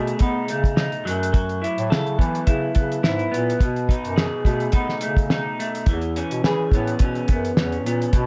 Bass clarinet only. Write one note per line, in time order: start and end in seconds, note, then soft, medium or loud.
0.00 0.14 B2 loud
0.21 0.43 B3 medium
0.49 0.94 C#3 medium
1.06 1.63 F#2 medium
1.78 1.88 A2 medium
1.92 2.14 C#3 medium
2.19 2.41 E3 medium
2.47 2.70 C#3 medium
2.76 2.98 C#3 medium
3.04 3.26 G#2 medium
3.32 3.55 A#2 medium
3.60 3.95 B2 loud
4.04 4.27 F#2 medium
4.45 4.68 B2 loud
4.73 4.96 B3 medium
5.02 5.47 C#3 medium
5.87 6.22 E2 loud
6.31 6.41 B2 medium
6.43 6.66 E3 medium
6.71 6.94 A2 medium
7.00 7.23 B2 medium
7.29 7.51 F#2 medium
7.57 7.87 E2 medium
7.85 8.08 A#2 medium
8.13 8.27 B2 loud